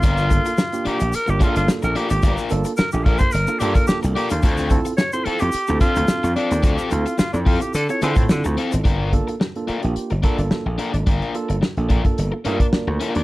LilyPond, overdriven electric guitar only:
\new Staff \with { instrumentName = "Overdriven electric guitar" } { \time 4/4 \key g \dorian \tempo 4 = 109 <d' f' bes'>8 r4 <d' f' bes'>8 r8 <d' f' bes'>8 r8 <d' f' bes'>8 | <d' f' bes'>8 r4 <d' f' bes'>8 r8 <d' f' bes'>8 r8 <d' f' bes'>8 | <c' f' a'>8 r4 <c' f' a'>8 r8 <c' f' a'>8 r8 <c' f' a'>8 | <c' f' a'>8 r4 <c' f' a'>8 r8 <c' f' a'>8 r8 <c' f' a'>8 |
<d' f' bes'>8 r4 <d' f' bes'>8 r8 <d' f' bes'>8 r8 <d' f' bes'>8 | <d' f' bes'>8 r4 <d' f' bes'>8 r8 <d' f' bes'>8 r8 <d' f' bes'>8 | }